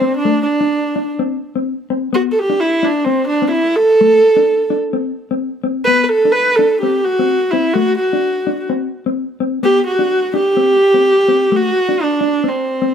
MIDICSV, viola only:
0, 0, Header, 1, 2, 480
1, 0, Start_track
1, 0, Tempo, 469484
1, 252, Time_signature, 4, 2, 24, 8
1, 13234, End_track
2, 0, Start_track
2, 0, Title_t, "Viola"
2, 0, Program_c, 0, 41
2, 0, Note_on_c, 0, 60, 81
2, 179, Note_off_c, 0, 60, 0
2, 185, Note_on_c, 0, 62, 84
2, 430, Note_off_c, 0, 62, 0
2, 436, Note_on_c, 0, 62, 79
2, 1143, Note_off_c, 0, 62, 0
2, 2195, Note_on_c, 0, 66, 90
2, 2273, Note_off_c, 0, 66, 0
2, 2373, Note_on_c, 0, 69, 61
2, 2445, Note_on_c, 0, 67, 87
2, 2460, Note_off_c, 0, 69, 0
2, 2662, Note_on_c, 0, 64, 89
2, 2678, Note_off_c, 0, 67, 0
2, 2910, Note_on_c, 0, 62, 81
2, 2925, Note_off_c, 0, 64, 0
2, 3115, Note_on_c, 0, 60, 84
2, 3131, Note_off_c, 0, 62, 0
2, 3351, Note_off_c, 0, 60, 0
2, 3357, Note_on_c, 0, 62, 86
2, 3586, Note_off_c, 0, 62, 0
2, 3594, Note_on_c, 0, 64, 86
2, 3842, Note_on_c, 0, 69, 99
2, 3858, Note_off_c, 0, 64, 0
2, 4806, Note_off_c, 0, 69, 0
2, 5985, Note_on_c, 0, 71, 104
2, 6171, Note_off_c, 0, 71, 0
2, 6171, Note_on_c, 0, 71, 65
2, 6227, Note_on_c, 0, 69, 88
2, 6242, Note_off_c, 0, 71, 0
2, 6463, Note_on_c, 0, 71, 94
2, 6478, Note_off_c, 0, 69, 0
2, 6706, Note_on_c, 0, 69, 84
2, 6721, Note_off_c, 0, 71, 0
2, 6958, Note_off_c, 0, 69, 0
2, 6972, Note_on_c, 0, 67, 79
2, 7207, Note_on_c, 0, 66, 87
2, 7222, Note_off_c, 0, 67, 0
2, 7676, Note_on_c, 0, 64, 85
2, 7691, Note_off_c, 0, 66, 0
2, 7911, Note_on_c, 0, 66, 93
2, 7926, Note_off_c, 0, 64, 0
2, 8155, Note_off_c, 0, 66, 0
2, 8161, Note_on_c, 0, 66, 78
2, 8845, Note_off_c, 0, 66, 0
2, 9863, Note_on_c, 0, 67, 109
2, 10081, Note_off_c, 0, 67, 0
2, 10095, Note_on_c, 0, 66, 97
2, 10540, Note_off_c, 0, 66, 0
2, 10601, Note_on_c, 0, 67, 105
2, 11821, Note_on_c, 0, 66, 106
2, 11836, Note_off_c, 0, 67, 0
2, 12296, Note_on_c, 0, 62, 91
2, 12312, Note_off_c, 0, 66, 0
2, 12764, Note_on_c, 0, 60, 75
2, 12779, Note_off_c, 0, 62, 0
2, 13234, Note_off_c, 0, 60, 0
2, 13234, End_track
0, 0, End_of_file